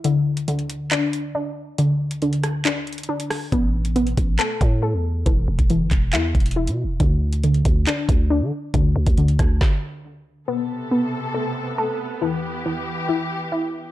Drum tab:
HH |x-----x-x-x-x---x---x-----------|x-----x-x-x-x---x---xxxx--x-o---|x-----x-x-x-x---x---x-----------|x-----x-x---x---x---xxxx--x-----|
CP |----------------x---------------|----------------x---------------|----------------x---------------|------------x---x---------------|
SD |--------------------------------|------------r---------------r---|--------------------------------|--------------------------------|
BD |--------------------------------|--------------------------------|o-----------o-------o-----------|o-----o-----o-------o-----------|

HH |x-----x-x-x-x---x---x-----------|x-----x-x-x-x-------------------|--------------------------------|--------------------------------|
CP |----------------x---------------|--------------------------------|--------------------------------|--------------------------------|
SD |--------------------------------|------------r---o---------------|--------------------------------|--------------------------------|
BD |o-----------o-------o-----------|o-----o-----o---o---------------|--------------------------------|--------------------------------|